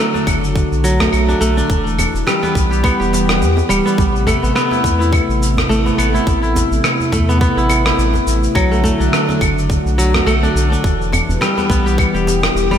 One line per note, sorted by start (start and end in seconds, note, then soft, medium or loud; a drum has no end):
0.00 1.70 D3 medium
0.00 0.83 F#3 loud
0.00 1.00 A3 medium
0.00 1.70 A3 medium
0.00 0.41 B3 medium
0.00 0.14 D4 medium
0.00 0.28 E4 medium
0.00 0.34 E4 medium
0.14 1.28 D4 medium
0.14 djembe tone medium
0.14 shaker soft
0.19 1.70 F#4 medium
0.27 0.64 F#1 loud
0.27 kick medium
0.27 claves medium
0.27 shaker medium
0.44 shaker soft
0.56 kick loud
0.56 djembe slap soft
0.56 shaker soft
0.72 1.07 B1 medium
0.72 shaker soft
0.84 1.74 F#3 medium
0.84 djembe tone soft
0.84 shaker medium
1.00 1.40 A3 medium
1.00 cross-stick medium
1.00 djembe bass medium
1.00 shaker soft
1.13 1.34 B1 medium
1.13 claves medium
1.13 shaker soft
1.28 1.57 D4 medium
1.28 djembe tone medium
1.28 shaker soft
1.41 1.62 B1 medium
1.41 3.40 A3 loud
1.41 shaker medium
1.57 3.25 D4 medium
1.57 shaker soft
1.69 2.07 E1 loud
1.69 3.98 E3 medium
1.69 kick loud
1.69 shaker soft
1.87 shaker soft
1.99 djembe slap medium
1.99 djembe bass medium
1.99 claves medium
1.99 shaker medium
2.15 2.23 E1 medium
2.15 3.98 G3 medium
2.15 shaker soft
2.27 3.68 G3 loud
2.27 cross-stick medium
2.27 shaker soft
2.43 2.83 B3 medium
2.43 djembe tone medium
2.43 shaker soft
2.55 2.92 B1 loud
2.55 kick medium
2.55 shaker medium
2.71 2.99 G4 medium
2.71 5.08 G4 medium
2.71 shaker soft
2.83 3.85 B3 medium
2.83 kick loud
2.83 claves medium
2.83 shaker soft
3.00 3.43 E1 medium
3.00 4.41 G4 medium
3.00 shaker soft
3.13 djembe slap medium
3.13 shaker medium
3.29 cross-stick medium
3.29 shaker soft
3.41 3.62 E2 medium
3.41 shaker soft
3.57 djembe tone medium
3.57 shaker soft
3.69 3.81 D1 medium
3.69 4.03 G3 medium
3.69 claves medium
3.69 shaker medium
3.86 4.42 B3 medium
3.86 shaker soft
3.98 4.35 A1 loud
3.98 8.55 C3 medium
3.98 kick loud
3.98 shaker soft
4.07 10.83 A3 medium
4.16 shaker soft
4.27 5.69 A3 medium
4.27 djembe slap medium
4.27 djembe bass medium
4.27 claves medium
4.27 shaker medium
4.43 4.52 A1 medium
4.43 4.55 B3 medium
4.43 shaker soft
4.55 5.85 B3 loud
4.55 cross-stick medium
4.55 shaker soft
4.71 5.00 E4 medium
4.71 9.48 E4 medium
4.71 djembe tone medium
4.71 shaker soft
4.84 5.21 E2 medium
4.84 kick loud
4.84 shaker medium
5.00 6.14 E4 medium
5.00 shaker soft
5.12 kick loud
5.12 djembe slap soft
5.12 claves medium
5.12 shaker soft
5.29 5.64 A1 medium
5.29 shaker soft
5.40 djembe tone soft
5.40 shaker medium
5.57 cross-stick medium
5.57 djembe bass medium
5.57 shaker soft
5.69 5.91 A1 loud
5.69 7.12 A3 medium
5.69 shaker soft
5.86 5.98 B3 medium
5.86 djembe tone medium
5.86 shaker soft
5.98 6.19 A1 medium
5.98 7.28 B3 medium
5.98 claves medium
5.98 shaker medium
6.14 6.42 E4 medium
6.14 shaker soft
6.27 6.64 A1 loud
6.27 kick loud
6.27 shaker soft
6.43 7.57 E4 medium
6.43 shaker soft
6.56 djembe slap medium
6.56 djembe bass medium
6.56 shaker medium
6.71 6.80 A1 medium
6.71 shaker soft
6.84 cross-stick medium
6.84 claves medium
6.84 shaker soft
7.00 djembe tone medium
7.00 shaker soft
7.12 7.49 E2 loud
7.12 8.71 A3 medium
7.12 kick medium
7.12 shaker medium
7.29 7.41 B3 medium
7.29 shaker soft
7.41 9.27 B3 medium
7.41 kick loud
7.41 shaker soft
7.57 7.92 A1 medium
7.57 7.85 E4 medium
7.57 shaker soft
7.69 djembe slap medium
7.69 claves medium
7.69 shaker medium
7.86 9.42 E4 medium
7.86 cross-stick medium
7.86 shaker soft
7.98 8.19 A1 loud
7.98 shaker soft
8.14 djembe tone medium
8.14 shaker soft
8.27 8.48 A1 medium
8.27 shaker medium
8.43 shaker soft
8.55 8.92 B1 medium
8.55 10.84 D3 medium
8.55 9.97 F#3 loud
8.55 kick loud
8.55 claves medium
8.55 shaker soft
8.71 8.83 A3 medium
8.71 shaker soft
8.83 10.14 A3 medium
8.83 djembe slap medium
8.83 djembe bass medium
8.83 shaker medium
9.00 9.09 B1 medium
9.00 9.28 D4 medium
9.00 shaker soft
9.13 cross-stick medium
9.13 shaker soft
9.29 10.42 D4 medium
9.29 djembe tone medium
9.29 shaker soft
9.41 9.78 F#1 loud
9.41 kick medium
9.41 claves medium
9.41 shaker medium
9.58 10.84 F#4 medium
9.58 shaker soft
9.69 kick loud
9.69 djembe slap soft
9.69 shaker soft
9.85 10.21 B1 medium
9.85 shaker soft
9.98 10.89 F#3 loud
9.98 djembe tone soft
9.98 shaker medium
10.14 10.26 A3 medium
10.14 cross-stick medium
10.14 djembe bass medium
10.14 shaker soft
10.27 10.48 B1 loud
10.27 12.26 A3 loud
10.27 claves medium
10.27 shaker soft
10.43 10.71 D4 medium
10.43 djembe tone medium
10.43 shaker soft
10.55 10.76 B1 medium
10.55 shaker medium
10.72 12.40 D4 medium
10.72 shaker soft
10.84 11.21 E1 loud
10.84 12.78 E3 medium
10.84 kick loud
10.84 shaker soft
11.01 shaker soft
11.12 djembe slap medium
11.12 djembe bass medium
11.12 claves medium
11.12 shaker medium
11.16 12.78 B4 medium
11.21 12.78 G3 medium
11.29 11.37 E1 medium
11.29 djembe tone soft
11.29 djembe bass medium
11.29 shaker soft
11.41 12.70 G3 loud
11.41 cross-stick medium
11.41 shaker soft
11.57 11.69 B3 medium
11.57 djembe tone medium
11.57 shaker soft
11.70 12.07 B1 loud
11.70 12.78 B3 medium
11.70 kick loud
11.70 shaker medium
11.86 12.14 G4 medium
11.86 12.78 G4 medium
11.86 shaker soft
11.98 kick loud
11.98 claves medium
11.98 shaker soft
12.14 12.49 E1 loud
12.14 12.78 G4 medium
12.14 shaker soft
12.27 djembe slap medium
12.27 shaker medium
12.43 cross-stick medium
12.43 shaker soft
12.55 12.76 E1 loud
12.55 shaker soft
12.71 12.78 G3 medium
12.71 djembe tone medium
12.71 shaker soft